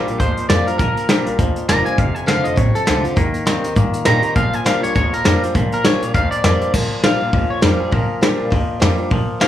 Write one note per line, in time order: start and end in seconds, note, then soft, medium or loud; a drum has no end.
0.00 0.17 A#2 medium
0.00 0.18 A#2 loud
0.00 0.18 G3 loud
0.07 0.19 A#1 medium
0.07 0.20 D4 soft
0.07 0.20 F4 medium
0.07 closed hi-hat medium
0.20 0.36 D2 medium
0.20 0.77 F2 medium
0.20 0.47 A#2 medium
0.20 0.48 F3 medium
0.20 0.48 C5 medium
0.20 kick loud
0.20 closed hi-hat medium
0.37 closed hi-hat medium
0.49 0.66 F2 medium
0.49 0.77 A#2 medium
0.49 0.66 F3 medium
0.49 0.77 G3 medium
0.49 0.66 A#3 loud
0.49 0.67 D4 medium
0.49 0.65 F4 loud
0.49 0.66 D5 medium
0.49 snare loud
0.49 closed hi-hat medium
0.67 0.79 D4 soft
0.67 0.79 F4 medium
0.67 0.77 A#4 medium
0.67 closed hi-hat medium
0.78 0.95 A#1 medium
0.78 1.37 A#2 medium
0.78 1.07 A#2 medium
0.78 1.07 F3 loud
0.78 1.36 A#4 loud
0.78 kick loud
0.78 closed hi-hat medium
0.97 muted upright bass stroke medium
0.97 closed hi-hat medium
1.09 1.25 A#1 medium
1.09 1.37 A#2 medium
1.09 1.26 F3 medium
1.09 1.37 G3 loud
1.09 1.26 A#3 medium
1.09 1.26 D4 medium
1.09 1.25 F4 medium
1.09 snare loud
1.09 closed hi-hat medium
1.26 1.38 A#1 medium
1.26 1.39 D4 soft
1.26 1.38 F4 medium
1.26 closed hi-hat medium
1.39 1.55 D2 medium
1.39 1.96 F2 medium
1.39 1.66 A#2 medium
1.39 1.67 F3 medium
1.39 kick loud
1.39 closed hi-hat medium
1.56 muted upright bass stroke medium
1.56 closed hi-hat medium
1.69 1.85 E1 medium
1.69 1.96 A#2 medium
1.69 1.85 F3 medium
1.69 1.96 G3 medium
1.69 1.86 A#3 medium
1.69 1.85 D4 medium
1.69 1.84 F4 medium
1.69 1.85 A#5 loud
1.69 snare loud
1.69 closed hi-hat loud
1.85 1.98 D4 medium
1.85 1.97 F4 medium
1.85 1.99 G#5 medium
1.85 muted upright bass stroke medium
1.85 closed hi-hat medium
1.98 2.14 F1 medium
1.98 2.55 F2 medium
1.98 2.25 F2 medium
1.98 2.26 C3 medium
1.98 2.15 F5 medium
1.98 kick loud
1.98 closed hi-hat medium
2.15 2.27 G#5 medium
2.15 muted upright bass stroke medium
2.15 closed hi-hat medium
2.26 2.44 F1 loud
2.26 2.55 F2 medium
2.26 2.55 D3 loud
2.26 2.44 F3 medium
2.26 2.44 A3 medium
2.26 2.44 C4 medium
2.26 2.43 F4 medium
2.26 2.45 F5 loud
2.26 snare loud
2.26 closed hi-hat medium
2.44 2.57 F1 medium
2.44 2.57 C4 soft
2.44 2.57 F4 medium
2.44 2.57 D#5 medium
2.44 closed hi-hat medium
2.56 2.74 A1 medium
2.56 2.85 F2 medium
2.56 3.14 C3 medium
2.56 2.85 C3 medium
2.56 2.74 C#5 medium
2.56 kick loud
2.56 closed hi-hat medium
2.75 3.04 A4 medium
2.75 closed hi-hat medium
2.86 3.04 C2 medium
2.86 3.15 F2 medium
2.86 3.15 D3 medium
2.86 3.03 F3 medium
2.86 3.04 A3 medium
2.86 3.04 C4 medium
2.86 3.03 F4 medium
2.86 snare loud
2.86 closed hi-hat medium
3.04 3.17 C4 medium
3.04 3.16 F4 medium
3.04 muted upright bass stroke medium
3.04 closed hi-hat medium
3.16 3.33 D#2 medium
3.16 3.74 D#3 medium
3.16 3.44 D#3 medium
3.16 3.44 A#3 loud
3.16 kick loud
3.16 closed hi-hat medium
3.34 muted upright bass stroke medium
3.34 closed hi-hat medium
3.46 3.63 D#2 medium
3.46 3.74 D#3 loud
3.46 3.63 G3 medium
3.46 3.63 A#3 medium
3.46 3.74 C4 loud
3.46 3.63 D#4 medium
3.46 3.61 G4 medium
3.46 snare loud
3.46 closed hi-hat medium
3.63 3.75 D#2 medium
3.63 3.76 D#4 soft
3.63 3.75 G4 medium
3.63 closed hi-hat medium
3.76 3.93 G2 medium
3.76 4.33 A#2 medium
3.76 4.03 D#3 medium
3.76 4.04 A#3 medium
3.76 kick loud
3.76 closed hi-hat medium
3.93 muted upright bass stroke medium
3.93 closed hi-hat medium
4.05 4.23 A#2 medium
4.05 4.34 D#3 medium
4.05 4.23 G3 medium
4.05 4.23 A#3 medium
4.05 4.34 C4 medium
4.05 4.22 D#4 medium
4.05 4.21 G4 medium
4.05 4.23 A#5 loud
4.05 snare loud
4.05 closed hi-hat medium
4.22 4.35 D#4 medium
4.22 4.35 G4 medium
4.22 4.36 A#5 medium
4.22 muted upright bass stroke medium
4.22 closed hi-hat medium
4.36 4.52 A#1 medium
4.36 4.93 A#2 medium
4.36 4.63 A#2 medium
4.36 4.64 F3 loud
4.36 4.54 F5 loud
4.36 kick loud
4.36 closed hi-hat medium
4.53 4.66 G#5 medium
4.53 muted upright bass stroke medium
4.53 closed hi-hat medium
4.64 4.82 A#1 medium
4.64 4.93 A#2 medium
4.64 4.82 F3 medium
4.64 4.93 G3 loud
4.64 4.82 A#3 medium
4.64 4.82 D4 medium
4.64 4.80 F4 medium
4.64 4.83 F5 medium
4.64 snare loud
4.64 closed hi-hat medium
4.81 4.95 A#1 medium
4.81 4.95 D4 soft
4.81 4.94 F4 medium
4.81 4.94 C#5 medium
4.81 closed hi-hat medium
4.95 5.12 D2 medium
4.95 5.52 F2 medium
4.95 5.23 A#2 medium
4.95 5.23 F3 medium
4.95 5.12 C#5 medium
4.95 kick loud
4.95 closed hi-hat medium
5.13 5.42 A#4 medium
5.13 closed hi-hat medium
5.24 5.42 F2 medium
5.24 5.53 A#2 medium
5.24 5.41 F3 medium
5.24 5.53 G3 loud
5.24 5.41 A#3 medium
5.24 5.42 D4 loud
5.24 5.41 F4 loud
5.24 snare loud
5.24 closed hi-hat medium
5.42 5.55 D4 medium
5.42 5.54 F4 medium
5.42 closed hi-hat medium
5.55 5.71 A#1 loud
5.55 6.12 A#2 medium
5.55 5.82 A#2 medium
5.55 5.82 F3 loud
5.55 kick loud
5.55 closed hi-hat medium
5.72 5.85 A#4 loud
5.72 muted upright bass stroke medium
5.72 closed hi-hat medium
5.84 6.01 A#1 medium
5.84 6.12 A#2 loud
5.84 6.01 F3 medium
5.84 6.12 G3 loud
5.84 6.01 A#3 medium
5.84 6.02 D4 medium
5.84 6.00 F4 medium
5.84 6.14 C#5 medium
5.84 snare loud
5.84 closed hi-hat medium
6.02 6.13 A#1 medium
6.02 6.14 D4 soft
6.02 6.14 F4 medium
6.02 closed hi-hat medium
6.14 6.31 D2 medium
6.14 6.71 F2 medium
6.14 6.41 A#2 medium
6.14 6.42 F3 loud
6.14 6.30 F5 medium
6.14 kick loud
6.14 closed hi-hat medium
6.31 6.72 D5 medium
6.31 muted upright bass stroke medium
6.31 closed hi-hat medium
6.44 6.60 F2 medium
6.44 6.71 A#2 medium
6.44 6.73 F3 medium
6.44 6.71 G3 medium
6.44 6.73 A#3 medium
6.44 6.73 D4 medium
6.44 6.73 F4 medium
6.44 snare loud
6.44 closed hi-hat medium
6.61 closed hi-hat medium
6.74 6.90 A#1 medium
6.74 7.01 A#2 medium
6.74 7.31 A#2 medium
6.74 7.01 F3 medium
6.74 kick loud
6.74 crash loud
6.91 muted upright bass stroke medium
7.03 7.20 A#1 loud
7.03 7.30 A#2 medium
7.03 7.20 F3 medium
7.03 7.31 G3 loud
7.03 7.20 A#3 medium
7.03 7.21 D4 medium
7.03 7.19 F4 loud
7.03 7.49 F5 loud
7.03 snare loud
7.03 open hi-hat medium
7.20 7.32 A#1 medium
7.20 7.33 D4 soft
7.20 7.32 F4 medium
7.33 7.49 D2 medium
7.33 7.90 F2 medium
7.33 7.60 A#2 medium
7.33 7.61 F3 medium
7.33 kick loud
7.33 open hi-hat soft
7.50 7.62 C#5 medium
7.50 muted upright bass stroke medium
7.62 7.79 F2 medium
7.62 7.90 A#2 medium
7.62 7.79 F3 medium
7.62 7.90 G3 medium
7.62 7.79 A#3 medium
7.62 7.79 D4 medium
7.62 7.77 F4 loud
7.62 7.80 A#4 medium
7.62 snare loud
7.79 7.92 D4 soft
7.79 7.91 F4 medium
7.79 7.92 G#4 medium
7.79 muted upright bass stroke medium
7.91 8.08 A#1 medium
7.91 8.49 A#2 medium
7.91 8.20 A#2 medium
7.91 8.20 F3 medium
7.91 8.79 A#4 loud
7.91 kick loud
7.91 open hi-hat soft
8.10 muted upright bass stroke medium
8.21 8.38 A#1 medium
8.21 8.50 A#2 medium
8.21 8.50 F3 medium
8.21 8.50 G3 loud
8.21 8.51 A#3 medium
8.21 8.51 D4 medium
8.21 8.51 F4 loud
8.21 snare loud
8.21 open hi-hat soft
8.40 8.51 A#1 loud
8.50 8.68 D2 medium
8.50 9.08 F2 medium
8.50 8.79 A#2 medium
8.50 8.80 F3 medium
8.50 kick loud
8.50 open hi-hat medium
8.70 muted upright bass stroke medium
8.80 8.98 F2 medium
8.80 9.09 A#2 medium
8.80 8.97 F3 medium
8.80 9.09 G3 medium
8.80 8.98 A#3 medium
8.80 8.98 D4 medium
8.80 8.96 F4 loud
8.80 snare loud
8.80 open hi-hat medium
8.97 9.11 D4 medium
8.97 9.10 F4 medium
8.97 muted upright bass stroke medium
9.11 9.27 A#1 medium
9.11 9.48 A#2 medium
9.11 9.39 A#2 medium
9.11 9.39 F3 loud
9.11 kick loud
9.11 open hi-hat medium
9.29 muted upright bass stroke medium
9.40 9.48 A#1 loud
9.40 9.48 A#2 loud
9.40 9.48 F3 medium
9.40 9.48 G3 medium
9.40 9.48 A#3 medium
9.40 9.48 D4 medium
9.40 9.48 F4 medium
9.40 9.48 F5 loud
9.40 snare loud
9.40 open hi-hat soft